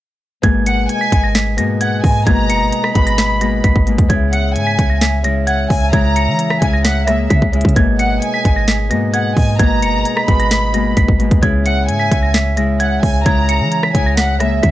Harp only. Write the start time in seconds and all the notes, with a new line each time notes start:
0.42 B2 G#3 A#3
1.56 B2 G#3 A#3
2.25 B2 G#3 A#3
2.94 B2 G#3 B3
3.40 B2 G#3 A#3
3.86 B2 G#3 A#3
4.08 C#3 G#3 E4
5.23 C#3 G#3 E4
5.91 C#3 G#3 E4
6.60 C#3 G#3 E4
7.06 C#3 G#3 A#3
7.52 C#3 G#3 E4
7.75 B2 G#3 A#3
8.89 B2 G#3 A#3
9.58 B2 G#3 A#3
10.27 B2 G#3 B3
10.72 B2 G#3 A#3
11.18 B2 G#3 A#3
11.41 C#3 G#3 E4
12.56 C#3 G#3 E4
13.24 C#3 G#3 E4
13.93 C#3 G#3 E4
14.39 C#3 G#3 A#3